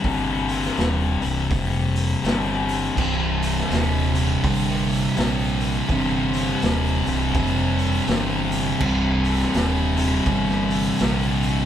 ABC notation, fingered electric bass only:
X:1
M:4/4
L:1/8
Q:"Swing" 1/4=82
K:Cm
V:1 name="Fingered electric bass" clef=bass
G,,,2 E,,, C,,, F,,,2 G,,,2 | C,,,2 E,,,2 G,,,2 B,,,2 | G,,,2 E,,, C,,, F,,,2 G,,,2 | C,,,2 E,,,2 G,,,2 B,,,2 |]